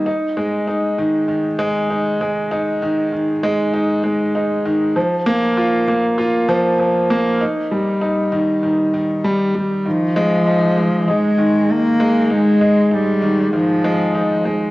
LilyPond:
<<
  \new Staff \with { instrumentName = "Grand piano" } { \clef bass \time 4/4 \key f \minor \tempo 4 = 98 ees'8 aes8 ees'8 ees8 ees8 aes8 ees'8 aes8 | ees'8 ees8 ees8 aes8 ees'8 aes8 ees'8 ees8 | f8 bes8 f'8 bes8 f'8 f8 f8 bes8 | ees'8 g8 ees'8 ees8 ees8 ees8 g8 g8 |
ees8 aes8 ees'8 aes8 ees'8 ees8 ees8 aes8 | ees'8 aes8 ees'8 ees8 ees8 aes8 ees'8 aes8 | }
  \new Staff \with { instrumentName = "Cello" } { \clef bass \time 4/4 \key f \minor r1 | r1 | r1 | r1 |
f2 aes4 bes4 | aes4 g4 f4. r8 | }
>>